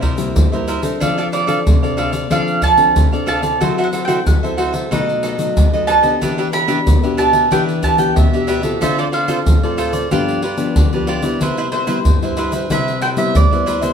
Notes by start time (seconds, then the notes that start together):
Already playing: C3
0.01 E4 A#4 C5 E5, pandeiro, surdo
0.18 G3 A#3 E4, pandeiro, shaker
0.36 G2, pandeiro, shaker, surdo
0.52 G3 A#3 E4 A#4 C5 E5, pandeiro, shaker
0.67 E4 A#4 C5 E5, pandeiro, shaker
0.82 C4 D4 A4 A#4 C5 E5, pandeiro, shaker
1.00 F3 D4 A4 D5 F5, pandeiro, shaker, surdo
1.18 D4 A4 D5 F5, pandeiro, shaker
1.32 D4 A4 D5 F5, pandeiro, shaker
1.47 C4 D4 A4 D5 F5, pandeiro, shaker
1.66 C3, pandeiro, shaker, surdo
1.83 C4 D4 A4 D5 F5, pandeiro, shaker
1.97 D4 A4 D5 F5, pandeiro
2.12 A4 D5 F5, pandeiro, shaker
2.30 F3 C4 D4 A4 D5 F5, pandeiro, shaker, surdo
2.48 pandeiro, shaker
2.62 D4 A4 D5 F5 A5, pandeiro, shaker, surdo
2.78 C4 D4 A4, pandeiro, shaker
2.96 C3, pandeiro, shaker, surdo
3.12 C4 D4 A4 D5 F5, pandeiro, shaker
3.26 D4 A4 D5 F5 A5, pandeiro
3.42 C4 E4 A4 D5 F5, pandeiro, shaker
3.60 F#3 F#4 A4 C5 E5, pandeiro, shaker, surdo
3.78 F#4 A4 C5 E5, pandeiro, shaker
3.84 F#5
3.93 F#4 A4 C5 E5, pandeiro, shaker
4.05 C4 E4 F#4 A4 C5 E5 G5, pandeiro, shaker
4.26 F#3 F#5, pandeiro, shaker, surdo
4.43 C4 E4 A4 C5 E5, pandeiro, shaker
4.57 F#4 A4 C5 E5, pandeiro
4.73 A4 C5 E5, pandeiro, shaker
4.91 B2 F#3 A3 D#4 A4 B4 D#5, pandeiro, shaker, surdo
5.09 pandeiro, shaker
5.23 D#4 A4 B4 D#5, pandeiro, shaker
5.39 F#3 A3 D#4, pandeiro, shaker
5.57 F#2, pandeiro, shaker, surdo
5.73 F#3 A3 D#4 A4 B4 D#5, pandeiro, shaker
5.87 D#4 A4 B4 D#5 A5, pandeiro, shaker
6.03 B3 D4 G4 A4 B4 D#5, pandeiro, shaker
6.21 E3 D4 G4 B4 E5, pandeiro, shaker, surdo
6.38 D4 G4 B4 E5, pandeiro, shaker
6.52 D4 G4 B4 E5 B5, pandeiro, shaker
6.68 B3 D4 G4 B4 E5, pandeiro, shaker
6.86 B2, pandeiro, shaker, surdo
7.03 B3 D4 G4 B4 E5, pandeiro, shaker
7.17 D4 G4 B4 E5 A5, pandeiro, shaker
7.33 G4 B4 E5, pandeiro, shaker
7.51 E3 B3 D4 G4 B4 E5 G5, pandeiro, shaker, surdo
7.69 pandeiro, shaker
7.82 D4 G4 B4 E5 A5, pandeiro, shaker, surdo
7.98 B3 D4 G4 G5, pandeiro, shaker
8.16 B2 E5, pandeiro, shaker, surdo
8.33 B3 D4 G4 B4 E5, pandeiro, shaker
8.47 D4 G4 B4 E5, pandeiro, shaker
8.62 C4 F4 G4 A4 B4 E5, pandeiro, shaker
8.81 D3 F4 A4 C5 D5 E5, pandeiro, shaker, surdo
8.98 F4 A4 C5 D5, pandeiro, shaker
9.12 F4 A4 C5 D5 F5, pandeiro
9.28 C4 F4 A4 C5 D5, pandeiro, shaker
9.46 A2, pandeiro, shaker, surdo
9.63 C4 F4 A4 C5 D5, pandeiro, shaker
9.77 F4 A4 C5 D5, pandeiro, shaker
9.93 A4 C5 D5, pandeiro, shaker
10.11 G2 F3 B3 D4 F4 G4 B4 D5, pandeiro, shaker, surdo
10.28 pandeiro, shaker
10.42 F4 G4 B4 D5, pandeiro
10.58 F3 B3 D4, pandeiro, shaker
10.76 D3, pandeiro, shaker, surdo
10.92 F3 B3 D4 G4 B4 D5, pandeiro, shaker
11.07 F4 G4 B4 D5, pandeiro
11.22 G3 B3 E4 G4 B4 D5, pandeiro, shaker
11.41 C3 E4 B4 C5 E5, pandeiro, shaker, surdo
11.57 E4 B4 C5 E5, pandeiro, shaker
11.72 E4 B4 C5 E5, pandeiro
11.87 G3 B3 E4 B4 C5 E5, pandeiro, shaker
12.05 G2, pandeiro, shaker, surdo
12.22 G3 E4 B4 C5 E5, pandeiro, shaker
12.37 E4 B4 C5 E5, pandeiro, shaker
12.52 B4 C5 E5, pandeiro, shaker
12.70 C3 G3 E4 B4 C5 E5, pandeiro, shaker, surdo
12.88 pandeiro, shaker
13.02 E4 B4 C5 E5 G5, pandeiro, shaker
13.17 G3 B3 E4 E5, pandeiro, shaker
13.35 G2 D5, pandeiro, shaker, surdo
13.51 G3 B3 E4 B4 C5 E5, pandeiro, shaker
13.66 E4 B4 C5 E5, pandeiro, shaker
13.81 G3 B3 E4 B4 C5 E5, pandeiro, shaker